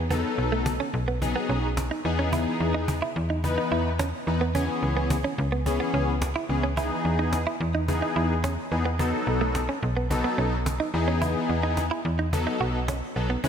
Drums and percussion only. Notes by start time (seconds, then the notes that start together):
0.10 cajon bass
0.66 cajon bass, cajon slap
1.22 cajon bass
1.77 cajon bass, cajon slap
2.33 cajon bass
2.88 cajon bass, cajon slap
3.44 cajon bass
3.99 cajon bass, cajon slap
4.55 cajon bass
5.10 cajon bass, cajon slap
5.66 cajon bass
6.22 cajon bass, cajon slap
6.77 cajon bass
7.33 cajon bass, cajon slap
7.88 cajon bass
8.44 cajon bass, cajon slap
8.99 cajon bass
9.55 cajon bass, cajon slap
10.11 cajon bass
10.66 cajon bass, cajon slap
11.22 cajon bass
11.77 cajon bass, cajon slap
12.33 cajon bass
12.88 cajon bass, cajon slap
13.44 cajon bass